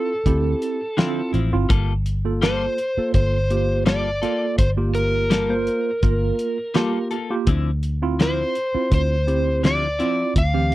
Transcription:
Already playing: tine electric piano C4 E4 F4, electric slide guitar A4
0.26 fingered electric bass D2, tine electric piano C4 E4 G4, kick, closed hi-hat
0.62 closed hi-hat
0.97 clean electric guitar D3 F3 C4 E4, tine electric piano C4 E4 F4, snare, closed hi-hat
1.33 fingered electric bass A1, clean electric guitar F3 C4 E4, closed hi-hat
1.53 fingered electric bass G1, tine electric piano C4 E4 F4
1.69 fingered electric bass G1, clean electric guitar G3 A#3 F4 A4, kick, closed hi-hat
2.06 closed hi-hat
2.25 tine electric piano A#3 F4 A4
2.42 clean electric guitar G3 A#3 F4 A4, electric slide guitar C5, snare, closed hi-hat
2.78 closed hi-hat
2.97 tine electric piano A#3 F4 A4, muted fingered electric bass stroke
3.14 fingered electric bass G1, electric slide guitar C5, kick, closed hi-hat
3.50 tine electric piano A#3 F4 G4, closed hi-hat
3.86 clean electric guitar G3 A#3 F4 A4, electric slide guitar D5, snare, closed hi-hat
4.22 tine electric piano A#3 F4 A4, clean electric guitar A#3 F4 A4, closed hi-hat
4.58 fingered electric bass G1, electric slide guitar C5, kick, closed hi-hat
4.77 tine electric piano A#3 F4 G4
4.95 electric slide guitar A#4, closed hi-hat
5.30 clean electric guitar G3 A#3 F4 A4, snare, closed hi-hat
5.49 tine electric piano A#3 F4 C5
5.67 closed hi-hat
6.03 fingered electric bass G1, tine electric piano A#3 F4 A#4, kick, closed hi-hat
6.39 closed hi-hat
6.74 clean electric guitar G3 A#3 F4 A4, tine electric piano A#3 F4 G4, snare, closed hi-hat
7.11 clean electric guitar A#3 F4 A4, closed hi-hat
7.30 tine electric piano A#3 F4 G4
7.47 fingered electric bass D2, clean electric guitar D3 F3 C4 E4, kick, closed hi-hat
7.83 closed hi-hat
8.02 tine electric piano C4 E4 F4
8.19 clean electric guitar D3 F3 C4 E4, electric slide guitar C5, snare, closed hi-hat
8.55 closed hi-hat
8.74 tine electric piano C4 E4 F4, muted fingered electric bass stroke
8.92 fingered electric bass D2, electric slide guitar C5, kick, closed hi-hat
9.27 tine electric piano C4 E4 G4, closed hi-hat
9.63 clean electric guitar D3 F3 C4 E4, electric slide guitar D5, snare, closed hi-hat
9.99 clean electric guitar F3 C4 E4, tine electric piano C4 E4 F4, closed hi-hat
10.36 fingered electric bass D2, electric slide guitar F5, kick, closed hi-hat
10.54 tine electric piano E3 C4 G4

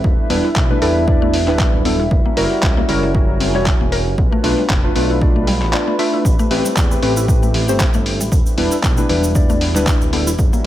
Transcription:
Already playing: analog synth pad E4, ambient pad A4 E5 B5
0.04 analog synth bass E1, analog synth pad G3 B3 D4 B4, ambient pad E4, kick
0.30 analog synth bass E1, synth keys G3 D4 E4 B4, synth arpeggio sound B3, ambient pad B4, open hi-hat
0.45 synth arpeggio sound E4
0.56 analog synth bass B1, kick, clap
0.70 synth keys G3 D4 E4 B4, synth arpeggio sound A3
0.81 analog synth bass E1, synth keys G3 D4 E4 B4, synth arpeggio sound A4, open hi-hat
1.07 synth keys G3 D4 E4 D5, kick
1.22 synth arpeggio sound A3
1.34 open hi-hat
1.48 analog synth bass D1, synth keys G3 D4 E4 B4, synth arpeggio sound G3, clap
1.59 kick, clap
1.74 analog synth bass D1
1.85 synth keys G3 D4 E4 A4, synth arpeggio sound B3, open hi-hat
2.00 analog synth bass E1, synth arpeggio sound E4
2.11 analog synth bass F#1, analog synth pad C#4 F#4 A#4, ambient pad F#4, kick
2.26 synth arpeggio sound A#3, ambient pad C#5
2.37 analog synth bass F#1, synth keys G3 E4 F#4 A#4, synth arpeggio sound A#4, open hi-hat
2.63 analog synth bass C#2, kick, clap
2.77 synth keys G3 E4 F#4 A#4, synth arpeggio sound A#3
2.88 analog synth bass F#1, synth keys G3 E4 F#4 A#4, open hi-hat
2.97 ambient pad G#5
3.03 synth arpeggio sound G3
3.14 synth keys G3 E4 F#4 A#4, kick
3.40 synth arpeggio sound C4, open hi-hat
3.55 analog synth bass E1, synth keys G3 E4 F#4 C#5, synth arpeggio sound E4
3.66 kick, clap
3.81 analog synth bass E1, synth arpeggio sound A#3
3.92 synth arpeggio sound A#4, open hi-hat
4.07 analog synth bass F#1
4.18 analog synth bass B1, analog synth pad A3 B3 D4 F4 B4, ambient pad B4, kick
4.32 synth arpeggio sound A3
4.43 analog synth bass B1, synth keys A3 D4 F4 B4, open hi-hat
4.58 synth arpeggio sound G3
4.68 analog synth bass F1, ambient pad B5, kick, clap
4.84 synth keys A3 D4 F4 B4
4.95 analog synth bass B1, synth keys A3 D4 F4 B4, synth arpeggio sound B3, open hi-hat
5.10 synth arpeggio sound E4
5.21 synth keys A3 D4 F4 D5, kick
5.36 synth arpeggio sound A3
5.47 synth arpeggio sound G3, open hi-hat
5.62 analog synth bass A1, clap
5.73 synth keys A3 D4 F4 D5, clap
5.88 synth arpeggio sound A3
5.99 synth keys A3 D4 F4 E5, open hi-hat
6.14 synth arpeggio sound E4
6.25 analog synth bass A1, analog synth pad C4 E4 G4, ambient pad A4, kick, shaker
6.39 synth arpeggio sound A3, shaker
6.50 analog synth bass A1, synth keys A3 C4 G4 B4, open hi-hat
6.63 synth arpeggio sound G3, ambient pad E5, shaker
6.77 analog synth bass E2, kick, clap, shaker
6.91 synth keys A3 C4 G4 B4, shaker
7.02 analog synth bass A1, synth keys A3 C4 G4 B4, synth arpeggio sound C4, open hi-hat
7.17 synth arpeggio sound E4, shaker
7.28 synth keys A3 C4 G4 B4, kick, shaker
7.43 synth arpeggio sound A3, shaker
7.54 synth arpeggio sound E3, open hi-hat
7.68 analog synth bass G1, synth keys A3 C4 G4 C5, shaker
7.79 kick, clap, shaker
7.94 analog synth bass G1, synth arpeggio sound A3, shaker
8.06 open hi-hat
8.20 analog synth bass A1, synth arpeggio sound G3, shaker
8.32 analog synth bass E1, analog synth pad G3 B3 D4 E4 B4, ambient pad E4, kick, shaker
8.46 shaker
8.57 analog synth bass E1, synth keys G3 D4 E4 B4, synth arpeggio sound B3, open hi-hat
8.71 synth arpeggio sound E4, ambient pad B4, shaker
8.83 analog synth bass B1, kick, clap, shaker
8.97 synth keys G3 D4 E4 B4, synth arpeggio sound A3, shaker
9.09 analog synth bass E1, synth arpeggio sound E3, synth keys G3 D4 E4 B4, open hi-hat
9.24 shaker
9.35 synth keys G3 D4 E4 D5, kick, shaker
9.49 synth arpeggio sound A3, shaker
9.61 open hi-hat
9.75 analog synth bass D1, synth keys G3 D4 E4 B4, synth arpeggio sound G3, clap, shaker
9.87 kick, clap, shaker
10.01 analog synth bass D1, shaker
10.12 synth keys G3 D4 E4 A4, synth arpeggio sound B3, open hi-hat
10.27 analog synth bass E1, synth arpeggio sound E4, shaker
10.39 analog synth bass F#1, analog synth pad C#4 F#4 A#4, ambient pad F#4, kick, shaker
10.53 synth arpeggio sound A#3, ambient pad C#5, shaker

